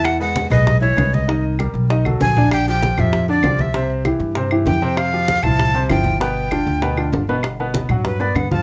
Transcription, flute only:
\new Staff \with { instrumentName = "Flute" } { \time 4/4 \key c \major \tempo 4 = 195 fis''8 fis''4 dis''4 des''4 dis''8~ | dis''8 r2 r8 aes''4 | g''8 g''4 e''4 d''4 e''8~ | e''8 r2 r8 g''4 |
f''4. a''4. g''4 | g''2. r4 | \key g \major r2 b'8 d''8 fis''8 a''8 | }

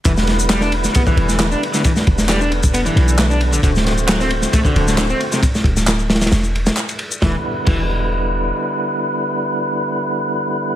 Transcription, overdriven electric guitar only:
\new Staff \with { instrumentName = "Overdriven electric guitar" } { \clef bass \time 4/4 \key e \minor \tempo 4 = 134 e16 r8. g16 d'16 r8 b16 e8. e16 d'16 r16 d16 | e16 r8. g16 d'16 r8 b16 e8. e16 d'16 r16 d16 | d16 r8. fis16 c'16 r8 a16 d8. d16 c'16 r16 c16 | r1 |
e16 r8. e16 r2 r8. | r1 | }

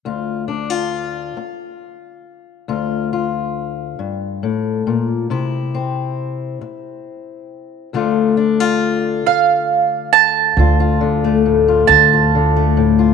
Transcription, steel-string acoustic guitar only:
\new Staff \with { instrumentName = "Steel-string acoustic guitar" } { \time 6/8 \key d \minor \tempo 4. = 46 << { f'8 d'16 f'2~ f'16 | f'8 f'2~ f'8 | e'8 c'2~ c'8 | <d a f'>8 d'16 f'2~ f'16 |
f'16 f'8 a8 f'16 f'16 f'8 a8 f'16 | } \\ { d,4. r4. | d,4. g,8 a,8 bes,8 | c4. r4. | d,4. r4. |
d,8 d8 a,8 d,8 d8 a,8 | } >> }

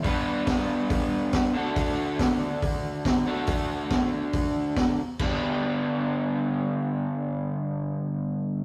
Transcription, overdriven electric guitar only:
\new Staff \with { instrumentName = "Overdriven electric guitar" } { \time 4/4 \key g \major \tempo 4 = 139 <g b d' b'>2.~ <g b d' b'>8 <d d' fis' a'>8~ | <d d' fis' a'>2.~ <d d' fis' a'>8 <d d' fis' a'>8~ | <d d' fis' a'>2.~ <d d' fis' a'>8 r8 | <g, d g b d' g'>1~ |
<g, d g b d' g'>1 | }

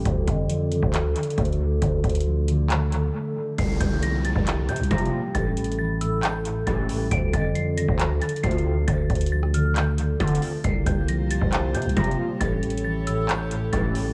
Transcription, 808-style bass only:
\new Staff \with { instrumentName = "808-style bass" } { \clef bass \time 4/4 \key d \minor \tempo 4 = 136 d,8 f,4~ f,16 d,8. r8 d,4 | d,8 d,2~ d,8 r4 | c,8 c,4~ c,16 c,8. c16 c,16 c8 r8 | a,,2. a,,4 |
d,8 f,4~ f,16 d,8. r8 d,4 | d,8 d,2~ d,8 d8 r8 | c,8 c,4~ c,16 c,8. c16 c,16 c8 r8 | a,,2. a,,4 | }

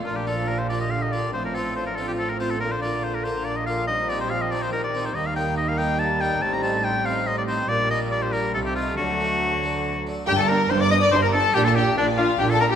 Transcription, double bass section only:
\new Staff \with { instrumentName = "Double bass section" } { \clef bass \time 3/4 \key bes \major \tempo 4 = 141 bes,,2. | a,,2. | bes,,2.~ | bes,,2. |
\key g \minor ees,2. | a,,2. | bes,,2 c,4 | d,2~ d,8 r8 |
g,,4 g,,4 g,,4 | bes,,4 bes,,4 bes,,4 | }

